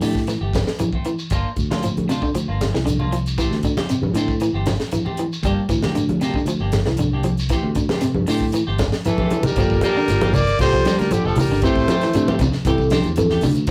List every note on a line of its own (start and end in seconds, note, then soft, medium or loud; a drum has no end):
0.01 0.36 A2 medium
0.01 0.24 D3 medium
0.01 0.18 E3 medium
0.01 0.18 A3 medium
0.01 0.19 G4 medium
0.01 muted clean electric guitar stroke medium
0.01 open hi-hat medium
0.01 shekere medium
0.15 kick medium
0.15 snare soft
0.15 shekere soft
0.27 0.50 E3 medium
0.27 snare soft
0.27 closed hi-hat medium
0.27 high conga soft
0.27 shekere medium
0.41 0.63 G1 medium
0.41 0.57 A3 soft
0.41 0.57 G4 soft
0.53 kick medium
0.53 snare medium
0.53 closed hi-hat soft
0.53 high conga medium
0.53 shekere medium
0.67 snare medium
0.67 shekere soft
0.79 1.01 E3 medium
0.79 closed hi-hat medium
0.79 high conga medium
0.79 shekere medium
0.93 1.09 A3 soft
0.93 1.09 C4 soft
0.93 muted clean electric guitar stroke medium
0.93 kick medium
1.05 1.27 E3 medium
1.05 closed hi-hat soft
1.05 shekere soft
1.19 shekere medium
1.30 1.43 G1 medium
1.30 1.48 F3 medium
1.30 1.48 A#3 medium
1.30 1.48 D4 medium
1.30 1.48 F4 medium
1.30 muted clean electric guitar stroke medium
1.30 kick medium
1.30 closed hi-hat medium
1.30 high conga soft
1.30 shekere medium
1.56 2.24 D2 medium
1.56 kick medium
1.56 closed hi-hat soft
1.56 shekere medium
1.70 1.87 A#3 soft
1.70 1.86 D4 medium
1.70 1.86 F4 medium
1.70 snare medium
1.70 high conga medium
1.70 shekere soft
1.83 2.05 F3 medium
1.83 closed hi-hat medium
1.83 shekere medium
1.97 closed hi-hat soft
1.97 high conga medium
2.09 2.20 C3 medium
2.09 2.25 F3 medium
2.09 2.25 D4 medium
2.09 2.26 F4 medium
2.09 snare soft
2.09 closed hi-hat soft
2.09 shekere medium
2.22 2.33 D3 medium
2.22 kick medium
2.22 shekere soft
2.35 2.46 D2 medium
2.35 2.56 F3 medium
2.35 closed hi-hat medium
2.35 high conga soft
2.35 shekere medium
2.48 2.71 G1 medium
2.48 2.64 A#3 soft
2.48 2.64 D4 soft
2.48 2.63 F4 soft
2.61 snare medium
2.61 closed hi-hat soft
2.61 high conga medium
2.61 shekere medium
2.74 3.38 C2 medium
2.74 2.85 E3 medium
2.74 snare medium
2.74 shekere soft
2.86 3.08 D3 medium
2.86 closed hi-hat medium
2.86 high conga medium
2.86 shekere medium
2.99 3.16 A#3 soft
2.99 3.15 D4 soft
2.99 3.15 F4 medium
2.99 high conga medium
3.12 3.34 F3 medium
3.12 closed hi-hat medium
3.12 shekere soft
3.26 closed hi-hat soft
3.26 shekere medium
3.38 3.50 A1 medium
3.38 3.54 E3 medium
3.38 3.60 E3 medium
3.38 3.54 A3 medium
3.38 3.54 C4 medium
3.38 3.55 G4 medium
3.38 kick medium
3.38 closed hi-hat medium
3.38 high conga soft
3.38 shekere medium
3.51 3.73 D2 medium
3.51 snare soft
3.63 3.86 D3 medium
3.63 kick medium
3.63 closed hi-hat soft
3.63 shekere medium
3.77 3.93 C4 soft
3.77 3.92 G4 soft
3.77 muted clean electric guitar stroke soft
3.77 snare medium
3.77 high conga medium
3.77 shekere soft
3.89 4.11 C3 medium
3.89 closed hi-hat medium
3.89 high conga soft
3.89 shekere medium
4.02 4.13 G2 medium
4.02 high conga medium
4.14 4.48 A2 medium
4.14 4.37 D3 medium
4.14 4.31 E3 medium
4.14 4.32 A3 medium
4.14 4.32 C4 medium
4.14 muted clean electric guitar stroke medium
4.14 closed hi-hat medium
4.14 shekere medium
4.28 kick medium
4.28 shekere soft
4.40 4.63 E3 medium
4.40 closed hi-hat medium
4.40 high conga soft
4.40 shekere medium
4.53 4.76 G1 medium
4.53 4.70 A3 soft
4.53 4.70 C4 medium
4.53 4.70 G4 medium
4.66 4.89 F3 medium
4.66 snare medium
4.66 closed hi-hat soft
4.66 high conga medium
4.66 shekere medium
4.80 snare medium
4.80 shekere soft
4.92 5.14 E3 medium
4.92 closed hi-hat medium
4.92 high conga medium
4.92 shekere medium
5.05 5.22 A3 soft
5.05 5.21 C4 medium
5.05 5.21 G4 medium
5.05 high conga medium
5.17 5.41 E3 medium
5.17 closed hi-hat soft
5.17 shekere soft
5.32 shekere medium
5.43 5.55 G1 medium
5.43 5.60 F3 medium
5.43 5.66 G3 medium
5.43 5.60 A#3 medium
5.43 5.61 D4 medium
5.43 5.61 G4 medium
5.43 kick medium
5.43 closed hi-hat medium
5.43 shekere medium
5.69 6.36 D2 medium
5.69 5.91 E3 medium
5.69 kick medium
5.69 closed hi-hat soft
5.69 shekere medium
5.83 5.99 A#3 soft
5.83 5.99 D4 soft
5.83 5.99 G4 medium
5.83 snare medium
5.83 high conga medium
5.83 shekere soft
5.95 6.17 D3 medium
5.95 closed hi-hat medium
5.95 high conga soft
5.95 shekere medium
6.09 closed hi-hat soft
6.09 high conga medium
6.21 6.33 C3 medium
6.21 6.38 F3 medium
6.21 6.38 A#3 medium
6.21 6.38 D4 medium
6.21 6.38 G4 medium
6.21 snare soft
6.21 closed hi-hat soft
6.21 shekere medium
6.34 6.46 D3 medium
6.34 kick medium
6.34 shekere soft
6.46 6.58 D2 medium
6.46 6.69 F3 medium
6.46 closed hi-hat medium
6.46 high conga soft
6.46 shekere medium
6.60 6.83 G1 medium
6.60 6.77 A#3 soft
6.60 6.76 D4 soft
6.60 6.76 G4 medium
6.72 snare medium
6.72 closed hi-hat soft
6.72 high conga medium
6.72 shekere medium
6.86 7.49 C2 medium
6.86 6.97 E3 medium
6.86 snare medium
6.86 shekere soft
6.97 7.21 D3 medium
6.97 closed hi-hat medium
6.97 high conga medium
6.97 shekere medium
7.13 7.29 A#3 soft
7.13 7.28 D4 medium
7.13 7.28 G4 medium
7.23 7.46 F3 medium
7.23 closed hi-hat soft
7.23 high conga medium
7.23 shekere soft
7.37 closed hi-hat soft
7.37 shekere medium
7.49 7.61 A1 medium
7.49 7.72 E3 medium
7.49 7.66 E3 medium
7.49 7.67 A3 medium
7.49 7.67 C4 medium
7.49 7.67 G4 medium
7.49 kick medium
7.49 closed hi-hat medium
7.49 high conga soft
7.49 shekere medium
7.63 7.86 D2 medium
7.75 7.98 D3 medium
7.75 kick medium
7.75 closed hi-hat soft
7.75 shekere medium
7.89 8.06 A3 soft
7.89 8.06 C4 soft
7.89 8.06 G4 medium
7.89 snare medium
7.89 high conga medium
7.89 shekere soft
8.01 8.23 C3 medium
8.01 snare soft
8.01 closed hi-hat medium
8.01 high conga soft
8.01 shekere medium
8.14 8.26 G2 medium
8.14 high conga medium
8.27 8.62 A2 medium
8.27 8.49 D3 medium
8.27 8.44 E3 medium
8.27 8.44 A3 medium
8.27 8.44 C4 medium
8.27 8.45 G4 medium
8.27 open hi-hat medium
8.27 shekere medium
8.40 kick medium
8.40 shekere soft
8.52 8.75 E3 medium
8.52 closed hi-hat medium
8.52 high conga soft
8.52 shekere medium
8.67 8.90 G1 medium
8.67 8.83 A3 soft
8.67 8.82 C4 soft
8.67 8.82 G4 medium
8.78 9.01 F3 medium
8.78 kick medium
8.78 snare medium
8.78 closed hi-hat medium
8.78 high conga medium
8.78 shekere medium
8.92 snare medium
8.92 shekere soft
9.05 9.47 E3 medium
9.05 9.27 E3 medium
9.05 9.47 A4 medium
9.05 closed hi-hat medium
9.05 high conga medium
9.05 shekere medium
9.18 9.35 A3 soft
9.18 9.34 C4 medium
9.18 9.34 G4 medium
9.18 kick medium
9.18 high conga medium
9.30 9.53 E3 medium
9.30 closed hi-hat soft
9.30 high conga medium
9.30 shekere soft
9.43 9.82 G3 medium
9.43 9.83 A#4 medium
9.43 low conga medium
9.43 shekere medium
9.56 9.79 G1 medium
9.56 9.73 F3 medium
9.56 9.79 F3 loud
9.56 9.73 A#3 medium
9.56 9.88 A#3 medium
9.56 9.73 D4 medium
9.56 9.88 F4 medium
9.56 9.73 G4 medium
9.56 9.88 A4 medium
9.56 kick loud
9.56 closed hi-hat medium
9.56 high conga soft
9.56 shekere medium
9.70 kick medium
9.70 shekere soft
9.81 9.98 F3 medium
9.81 10.36 G3 medium
9.81 9.99 A#3 medium
9.81 9.99 D4 medium
9.81 9.99 G4 medium
9.81 10.36 A#4 loud
9.81 closed hi-hat soft
9.81 high conga medium
9.81 shekere medium
9.95 10.18 D3 medium
9.95 muted fingered electric bass stroke soft
9.95 shekere soft
10.08 10.52 G1 medium
10.08 10.39 A#3 medium
10.08 10.40 F4 medium
10.08 10.40 C5 medium
10.08 snare soft
10.08 closed hi-hat medium
10.08 high conga soft
10.08 shekere medium
10.21 10.38 A#3 soft
10.21 10.37 D4 soft
10.21 10.37 G4 medium
10.21 closed hi-hat soft
10.21 high conga loud
10.21 shekere soft
10.33 10.59 A#3 medium
10.33 10.60 D5 loud
10.33 kick medium
10.33 closed hi-hat soft
10.33 low conga medium
10.33 shekere medium
10.47 closed hi-hat soft
10.47 high conga soft
10.47 shekere soft
10.59 10.81 C2 medium
10.59 10.75 F3 medium
10.59 11.00 G3 medium
10.59 10.90 A#3 medium
10.59 10.76 A#3 medium
10.59 10.76 D4 medium
10.59 10.90 F4 medium
10.59 10.76 G4 medium
10.59 10.91 A4 medium
10.59 11.01 C5 loud
10.59 kick medium
10.59 snare soft
10.59 closed hi-hat medium
10.59 shekere medium
10.72 10.84 F3 medium
10.72 kick medium
10.72 closed hi-hat soft
10.72 shekere soft
10.85 11.02 F3 medium
10.85 11.07 G3 medium
10.85 11.02 A#3 medium
10.85 11.02 D4 medium
10.85 muted clean electric guitar stroke medium
10.85 snare medium
10.85 closed hi-hat medium
10.85 high conga medium
10.85 shekere medium
10.99 11.10 D2 medium
10.99 11.14 G3 medium
10.99 11.14 A#4 medium
10.99 snare soft
10.99 closed hi-hat soft
10.99 shekere soft
11.11 11.28 D3 medium
11.11 11.33 F3 medium
11.11 11.42 A#3 medium
11.11 11.42 F4 medium
11.11 11.27 G4 medium
11.11 11.42 A4 medium
11.11 closed hi-hat medium
11.11 high conga medium
11.11 shekere medium
11.25 11.36 F1 medium
11.25 11.41 F3 medium
11.25 11.40 D4 medium
11.25 11.40 G4 medium
11.25 11.40 A4 medium
11.25 muted clean electric guitar stroke soft
11.25 shekere soft
11.36 11.48 E3 medium
11.36 11.62 A#4 medium
11.36 open hi-hat medium
11.36 low conga medium
11.40 11.64 G3 medium
11.40 shekere medium
11.50 11.61 G1 medium
11.50 11.61 D3 medium
11.50 shekere soft
11.62 11.84 A1 medium
11.62 11.84 E3 medium
11.62 11.79 E3 medium
11.62 11.79 A3 medium
11.62 12.37 A3 medium
11.62 11.93 C4 medium
11.62 11.79 C4 medium
11.62 11.93 E4 medium
11.62 11.93 G4 medium
11.62 11.79 G4 medium
11.62 12.36 C5 medium
11.62 kick medium
11.62 closed hi-hat medium
11.62 shekere medium
11.76 kick medium
11.76 shekere soft
11.88 12.05 E3 medium
11.88 12.00 F3 medium
11.88 12.05 A3 medium
11.88 12.05 C4 medium
11.88 12.05 G4 medium
11.88 closed hi-hat medium
11.88 high conga loud
11.88 shekere medium
12.01 12.13 E3 medium
12.01 snare soft
12.01 closed hi-hat soft
12.01 shekere soft
12.13 12.36 A2 medium
12.13 12.36 D3 medium
12.13 12.45 C4 medium
12.13 12.45 E4 medium
12.13 12.46 G4 medium
12.13 closed hi-hat medium
12.13 shekere medium
12.28 12.43 A3 medium
12.28 12.43 C4 medium
12.28 12.43 G4 medium
12.28 high conga medium
12.28 shekere soft
12.39 12.62 C3 medium
12.39 kick medium
12.39 closed hi-hat medium
12.39 high conga medium
12.39 low conga medium
12.39 shekere medium
12.53 snare soft
12.53 high conga soft
12.53 shekere soft
12.65 12.99 C2 medium
12.65 12.81 E3 medium
12.65 12.88 E3 medium
12.65 12.96 C4 loud
12.65 12.97 E4 medium
12.65 12.82 G4 medium
12.65 12.97 A4 loud
12.65 muted clean electric guitar stroke medium
12.65 kick medium
12.65 closed hi-hat medium
12.65 shekere medium
12.78 kick medium
12.78 shekere soft
12.90 13.13 D3 medium
12.90 13.07 E3 medium
12.90 13.07 A3 medium
12.90 13.07 C4 medium
12.90 13.07 G4 medium
12.90 snare medium
12.90 closed hi-hat medium
12.90 high conga medium
12.90 shekere medium
13.03 13.37 E2 medium
13.03 closed hi-hat soft
13.03 shekere soft
13.16 13.39 E3 medium
13.16 13.48 C4 medium
13.16 13.48 E4 medium
13.16 13.48 A4 medium
13.16 closed hi-hat medium
13.16 high conga medium
13.16 shekere medium
13.30 13.46 A3 soft
13.30 13.45 G4 medium
13.30 muted clean electric guitar stroke medium
13.30 snare soft
13.30 high conga medium
13.30 shekere soft
13.41 13.64 D2 medium
13.41 13.64 D3 medium
13.41 open hi-hat medium
13.41 low conga medium
13.41 shekere medium
13.55 closed hi-hat soft
13.55 shekere soft
13.67 13.71 G1 loud
13.67 kick loud
13.67 closed hi-hat medium